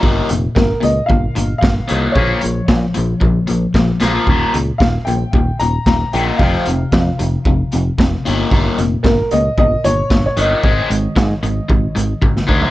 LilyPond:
<<
  \new Staff \with { instrumentName = "Upright piano" } { \time 4/4 \key ees \mixolydian \tempo 4 = 113 r4 bes'8 ees''8 f''4 f''4 | des''4 r2. | r4 f''8 g''4 bes''8 bes''8 g''8 | f''4. r2 r8 |
r4 bes'8 ees''8 ees''8 des''8. des''16 ees''8~ | ees''2. r4 | }
  \new Staff \with { instrumentName = "Overdriven electric guitar" } { \clef bass \time 4/4 \key ees \mixolydian <ees, bes, ees>8 <ees, bes,>8 <ees, bes,>8 <ees, bes,>8 <ees, bes,>8 <ees, bes,>8 <ees, bes,>8 <ees, bes, ees>8 | <bes, f bes>8 <bes, f>8 <bes, f>8 <bes, f>8 <bes, f>8 <bes, f>8 <bes, f>8 <bes, f bes>8 | <ees, bes, ees>8 <ees, bes,>8 <ees, bes,>8 <ees, bes,>8 <ees, bes,>8 <ees, bes,>8 <ees, bes,>8 <ees, bes, ees>8 | <f, c f>8 <f, c>8 <f, c>8 <f, c>8 <f, c>8 <f, c>8 <f, c>8 <ees, bes, ees>8 |
<ees, bes, ees>8 <ees, bes,>8 <ees, bes,>8 <ees, bes,>8 <ees, bes,>8 <ees, bes,>8 <ees, bes,>8 <ees, bes, ees>8 | <aes, ees aes>8 <aes, ees>8 <aes, ees>8 <aes, ees>8 <aes, ees>8 <aes, ees>8 <aes, ees>8 <aes, ees aes>8 | }
  \new Staff \with { instrumentName = "Picked electric bass" } { \clef bass \time 4/4 \key ees \mixolydian g,,8 f,,8 g,,8 des,8 g,,8 g,,8 g,,8 c,8 | bes,,8 bes,,8 bes,8 bes,,8 bes,,8 bes,,8 bes,,8 bes,,8 | ees,,8 des,8 ees,,8 bes,,8 ees,,8 ees,,8 ees,,8 bes,,8 | f,,8 f,,8 f,8 f,,8 f,,8 f,,8 f,,8 g,,8 |
g,,8 f,,8 g,,8 des,8 g,,8 g,,8 g,,8 g,,8 | aes,,8 aes,,8 aes,8 aes,,8 aes,,8 aes,,8 aes,,8 d,8 | }
  \new DrumStaff \with { instrumentName = "Drums" } \drummode { \time 4/4 bd8 hh8 <bd sn>8 hh8 bd8 hh8 <bd sn>8 hh8 | bd8 hh8 <bd sn>8 hh8 bd8 hh8 <bd sn>8 <hh sn>8 | bd8 hh8 <bd sn>8 hh8 bd8 hh8 <bd sn>8 hh8 | bd8 hh8 <bd sn>8 hh8 bd8 hh8 <bd sn>8 hh8 |
bd8 hh8 <bd sn>8 hh8 bd8 hh8 <bd sn>8 hh8 | bd8 hh8 <bd sn>8 hh8 bd8 hh8 <bd tommh>16 sn16 bd16 tomfh16 | }
>>